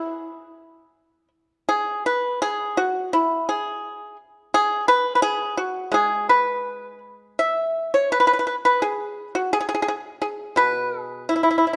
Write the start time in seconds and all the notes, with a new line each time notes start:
Already playing: E4
1.69 G#4
2.06 B4
2.42 G#4
2.77 F#4
3.13 E4
3.49 G#4
4.54 G#4
4.88 B4
5.15 B4
5.22 G#4
5.57 F#4
5.92 G#3 G#4
6.29 B4
7.39 E5
7.94 C#5
8.12 B4
8.20 B4
8.27 B4
8.39 B4
8.47 B4
8.65 B4
8.82 G#4
9.35 F#4
9.53 G#4
9.61 G#4
9.69 G#4
9.75 G#4
9.82 G#4
9.88 G#4
10.22 G#4
10.56 B2 B4
11.01 G#4
11.29 E4
11.36 E4
11.43 E4
11.51 E4
11.58 E4
11.67 E4